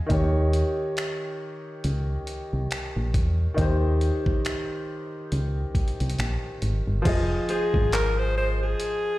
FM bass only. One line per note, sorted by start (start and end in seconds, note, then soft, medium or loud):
0.10 0.63 D#2 loud
1.85 2.18 C#2 loud
2.53 2.67 C2 medium
2.96 3.16 A#1 medium
3.14 3.48 E2 medium
3.58 4.11 D#2 loud
5.32 5.66 C#2 medium
5.75 5.85 C2 soft
6.01 6.15 C2 medium
6.19 6.38 A#1 medium
6.62 6.82 G#1 medium
6.88 7.02 G1 medium
7.06 7.39 F1 loud
7.74 8.76 G#1 loud